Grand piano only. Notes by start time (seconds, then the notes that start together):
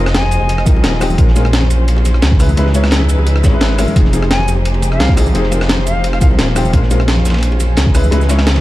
0.65 F3 C4 D#4 A#4
1.00 F3 C4 D#4 G4
1.17 G#3 C#4 F4 A#4
1.35 G#3 C#4 F4 A#4
2.39 G#3 C#4 E4 B4
2.56 G#3 C#4 E4 B4
2.74 G#3 C#4 E4 C#5
3.43 G#3 C#4 E4 C#5
3.52 G#3 C#4 E4 B4
3.78 G#3 C#4 E4 A#4
3.95 F3 C4 D#4 G#4
4.12 F3 C4 D#4 G#4
5.16 F3 C4 D#4 G#4
5.34 F3 C4 D#4 G#4
5.51 F3 C4 D#4 A#4
6.20 F3 C4 D#4 A#4
6.55 F3 C4 D#4 G4
6.72 G#3 C#4 F4 A#4
6.90 G#3 C#4 F4 A#4
7.94 G#3 C#4 E4 B4
8.11 G#3 C#4 E4 B4
8.28 G#3 C#4 E4 C#5